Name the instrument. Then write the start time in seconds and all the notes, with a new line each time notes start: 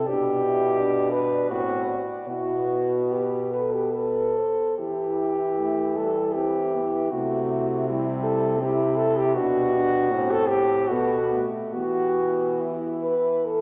french horn
Already playing: C4
0.06 B2 D4 G4 D5
0.45 E4
0.79 D4
1.11 B4
1.50 A2 C4 F#4 C5
1.88 D5
2.27 B2 B3 E4 F#4
3.11 G4 B4
3.51 A4 B4
3.73 G4
3.92 A4 B4
4.37 C5
4.78 E3 E4 G4
5.58 A3
5.97 G3 A4
6.34 C4 E4 G4
6.74 B3
7.11 C3 A3 E4 F#4
7.88 G3 E4
8.23 A4
8.61 E4 G4
8.97 A4
9.18 G4
9.35 B2 D4 F#4 G4
9.74 D4
10.10 A2 C4 F#4
10.31 A4
10.48 G4
10.87 B2 B3 F#4
10.91 A4
11.32 A3
11.73 E3 B3 F#4 G4
12.59 E4 G4
13.01 B4
13.45 A4